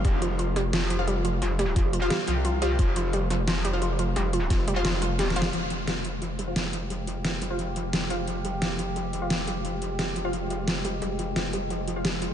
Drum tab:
HH |x--x--x--x--x--x--x--x--|x--x--x--x--x--x--x--x--|x--x--x--x--x--x--x--x--|x--x--x--x--x--x--x--x--|
SD |---------o--o-----------|o--o--------o-----------|---------o--o-----------|o-----o-----o--o--o-o-o-|
BD |o-----------------------|------o-----------------|o-----------------------|------o-----------------|

HH |x--x--x--x--x--x--x--x--|x--x--x--x--x--x--x--x--|x--x--x--x--x--x--x--x--|x--x--x--x--x--x--x--x--|
SD |------o-----------o-----|------o-----------o-----|------o-----------o-----|------o-----------o-----|
BD |------------------------|------------------------|------------------------|------------------------|

HH |x--x--x--x--x--x--x--x--|
SD |------o-----------o-----|
BD |------------------------|